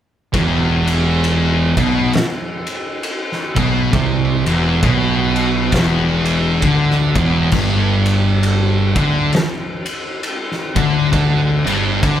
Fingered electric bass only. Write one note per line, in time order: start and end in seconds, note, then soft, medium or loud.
0.34 1.72 E1 medium
1.77 2.10 B1 loud
3.57 3.90 B1 loud
3.93 4.42 C2 loud
4.46 4.80 E1 loud
4.83 5.68 B1 loud
5.73 6.58 E1 loud
6.62 7.12 D2 loud
7.16 7.50 E1 loud
7.53 8.92 G1 loud
8.96 9.30 D2 loud
10.77 11.10 D2 medium
11.13 11.62 D2 loud
11.66 12.00 G1 loud
12.03 12.20 D2 loud